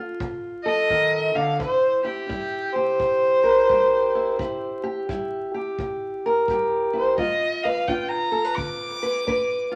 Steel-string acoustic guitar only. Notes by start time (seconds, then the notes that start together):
Already playing: A3 F4
0.21 C3
0.66 A4
0.91 D#3
1.35 D3
1.59 C3 E4
2.04 E4
2.29 G3 E4
2.76 G4
3.00 C3
3.44 A#4
3.69 G3 G4
4.15 E4
4.39 C3 E4
4.83 G4
5.09 G3 E4
5.54 G4
5.80 C3
6.26 A#4
6.49 G3 G4
6.93 E4
7.18 G3 F4
7.65 B4
7.88 D4 F4
8.32 A4
8.44 B4
8.57 D3
9.03 B4
9.27 D4 B4
9.71 F4